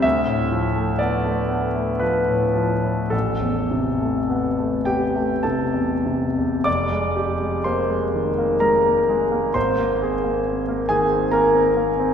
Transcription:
0.02 D2 E5
0.27 A2
0.52 F3
0.76 A3
0.99 B3 D5
1.24 A3
1.50 B3
1.75 A3
1.99 F3 B4
2.28 A2
2.55 F3
2.83 A2
3.10 A1 A4
3.41 E2
3.71 C3
4.00 A3
4.29 B3
4.58 A3
4.85 B3 G4 G5
5.15 A3
5.43 C3 A4 A5
5.74 E2
6.06 C3
6.38 E2
6.64 F1 D5 D6
6.92 G#3
7.16 G4
7.41 G#3
7.64 A#3 C5 C6
7.90 G#3
8.15 D#3
8.38 A#3
8.60 G#3 A#4 A#5
8.86 A#3
9.09 G#3
9.32 A#3
9.54 G#1 C5 C6
9.78 A#3
10.02 G#4
10.24 A#3
10.47 C4
10.69 A#3
10.89 D#3 G#4 G#5
11.12 C4
11.31 A#3 A#4 A#5
11.55 C4
11.77 A#3
12.00 C4

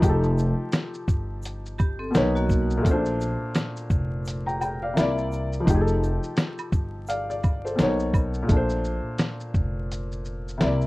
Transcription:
Already playing: F3
0.00 F1 D#4, kick, closed hi-hat, shaker
0.04 G4
0.09 A4
0.23 shaker
0.38 shaker
0.72 snare, closed hi-hat, shaker
0.94 shaker
1.08 G1, kick, shaker
1.43 closed hi-hat, shaker
1.45 shaker
1.66 shaker
1.78 G4, kick, high woodblock, shaker
1.99 C4 A4
2.11 B2 A#3 B4, shaker
2.15 B1 D#4 C#5, snare, closed hi-hat, shaker
2.35 A#3 F#4, shaker
2.49 kick, shaker
2.70 shaker
2.77 A#2
2.82 A#1 A3, kick
2.86 C#4, closed hi-hat, shaker
2.91 D4 C5
3.05 shaker
3.20 shaker
3.55 snare, closed hi-hat, shaker
3.77 shaker
3.90 F1, kick, shaker
4.25 closed hi-hat, shaker
4.28 shaker
4.46 G5 A#5, shaker
4.61 G5, high woodblock, shaker
4.83 D5 F5
4.94 C3 A#3, snare, closed hi-hat, shaker
4.98 C2 E4 D5
5.18 shaker
5.32 shaker
5.53 shaker
5.60 F3
5.65 F1 D#4, kick, closed hi-hat, shaker
5.70 G4
5.74 G#4
5.81 A4
5.88 shaker
6.03 shaker
6.23 shaker
6.37 snare, closed hi-hat, shaker
6.58 high woodblock, shaker
6.72 G1, kick, shaker
7.07 D5 F5, closed hi-hat, shaker
7.10 shaker
7.30 D5, shaker
7.43 kick, high woodblock, shaker
7.65 A4 C5, shaker
7.76 B2 A#3, snare, closed hi-hat, shaker
7.80 B1 D#4 C#5
8.00 shaker
8.14 kick, high woodblock, shaker
8.34 shaker
8.43 A#2
8.48 A#1 A3, kick, closed hi-hat, shaker
8.52 D4
8.57 C5
8.69 shaker
8.84 shaker
9.18 snare, closed hi-hat, shaker
9.40 shaker
9.54 F1, kick, shaker
9.92 closed hi-hat, shaker
10.12 shaker
10.25 shaker
10.48 shaker
10.57 C3 A#3, snare, closed hi-hat, shaker
10.62 C2 E4 D5
10.81 shaker

